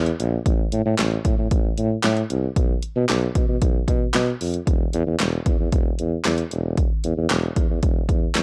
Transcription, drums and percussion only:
0.06 closed hi-hat medium
0.20 closed hi-hat medium
0.46 kick loud
0.46 closed hi-hat medium
0.72 closed hi-hat medium
0.98 snare medium
0.98 clap loud
0.98 closed hi-hat medium
1.25 kick loud
1.25 closed hi-hat medium
1.51 kick loud
1.51 closed hi-hat loud
1.78 closed hi-hat medium
2.04 snare loud
2.04 clap loud
2.04 closed hi-hat medium
2.17 closed hi-hat medium
2.30 closed hi-hat medium
2.56 kick loud
2.56 closed hi-hat medium
2.83 closed hi-hat medium
3.09 snare medium
3.09 clap loud
3.09 closed hi-hat medium
3.35 kick loud
3.35 closed hi-hat medium
3.62 kick loud
3.62 closed hi-hat loud
3.88 kick medium
3.88 closed hi-hat medium
4.14 snare loud
4.14 clap loud
4.14 closed hi-hat medium
4.41 open hi-hat medium
4.54 closed hi-hat soft
4.67 kick loud
4.67 closed hi-hat medium
4.93 closed hi-hat medium
5.20 snare medium
5.20 clap loud
5.20 closed hi-hat medium
5.46 kick medium
5.46 closed hi-hat medium
5.72 kick loud
5.72 closed hi-hat loud
5.99 closed hi-hat medium
6.25 snare loud
6.25 clap loud
6.25 closed hi-hat medium
6.38 closed hi-hat medium
6.51 closed hi-hat medium
6.77 kick loud
6.77 closed hi-hat medium
7.04 closed hi-hat medium
7.30 snare loud
7.30 clap loud
7.30 closed hi-hat medium
7.56 kick medium
7.56 closed hi-hat medium
7.83 kick loud
7.83 closed hi-hat loud
8.09 kick medium
8.09 closed hi-hat medium
8.35 snare loud
8.35 clap loud
8.35 closed hi-hat medium

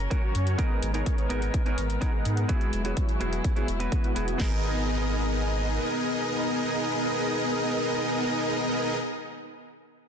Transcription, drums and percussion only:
0.11 kick loud
0.11 closed hi-hat medium
0.35 closed hi-hat medium
0.47 closed hi-hat soft
0.59 kick loud
0.59 closed hi-hat medium
0.82 closed hi-hat medium
0.94 closed hi-hat soft
1.06 kick loud
1.06 closed hi-hat medium
1.18 closed hi-hat soft
1.30 closed hi-hat medium
1.42 closed hi-hat soft
1.54 kick loud
1.54 closed hi-hat medium
1.66 closed hi-hat soft
1.78 closed hi-hat medium
1.90 closed hi-hat soft
2.02 kick loud
2.02 closed hi-hat medium
2.25 closed hi-hat medium
2.37 closed hi-hat soft
2.49 kick loud
2.49 closed hi-hat medium
2.61 closed hi-hat soft
2.73 closed hi-hat medium
2.85 closed hi-hat soft
2.97 kick loud
2.97 closed hi-hat medium
3.09 closed hi-hat soft
3.21 closed hi-hat medium
3.33 closed hi-hat soft
3.44 kick loud
3.44 closed hi-hat medium
3.56 closed hi-hat soft
3.68 closed hi-hat medium
3.80 closed hi-hat soft
3.92 kick loud
3.92 closed hi-hat medium
4.04 closed hi-hat soft
4.16 closed hi-hat medium
4.28 closed hi-hat soft
4.40 kick medium
4.40 snare medium
4.40 crash medium

